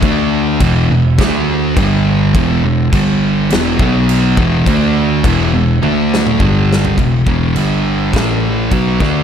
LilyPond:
<<
  \new Staff \with { instrumentName = "Distorted electric guitar" } { \clef bass \time 4/4 \key e \minor \tempo 4 = 104 <d a d'>4 <e, b, e>8 <e, b,>8 <d a d'>4 <g, d g>4 | <e, b, e>8 <e, b,>8 <g, d g>4 <e, b, e>8 <b, fis b>4 <e, b, e>8 | <d a d'>4 <e, b, e>8 <e, b,>8 <d a d'>4 <g, d g>4 | <e, b,>8 <e, b, e>8 <g, d g>4 <a, e a>4 <b, fis b>8 <d a d'>8 | }
  \new Staff \with { instrumentName = "Distorted electric guitar" } { \clef bass \time 4/4 \key e \minor <d a d'>4 <e, b, e>8 <e, b,>8 <d a d'>4 <g, d g>4 | <e, b, e>8 <e, b,>8 <g, d g>4 <e, b, e>8 <b, fis b>4 <e, b, e>8 | <d a d'>4 <e, b, e>8 <e, b,>8 <d a d'>4 <g, d g>4 | <e, b,>8 <e, b, e>8 <g, d g>4 <a, e a>4 <b, fis b>8 <d a d'>8 | }
  \new Staff \with { instrumentName = "Tine electric piano" } { \clef bass \time 4/4 \key e \minor d,4 e,,8 e,,8 d,4 g,,4 | e,,8 e,,8 g,,4 e,,8 b,,4 e,,8 | d,4 e,,8 e,,8 d,4 g,,4 | e,,8 e,,8 g,,4 a,,4 b,,8 d,8 | }
  \new DrumStaff \with { instrumentName = "Drums" } \drummode { \time 4/4 <cymc bd>4 <cymc bd>4 <cymc bd sn>4 <cymc bd>4 | <cymc bd>4 <cymc bd>4 <cymc sn>8 bd8 cymc8 bd8 | <cymc bd>4 <cymc bd>4 tommh8 sn16 toml16 bd8 sn16 tomfh16 | <cymc bd>8 bd8 cymc4 <cymc bd sn>4 <cymc bd>8 <bd sn>8 | }
>>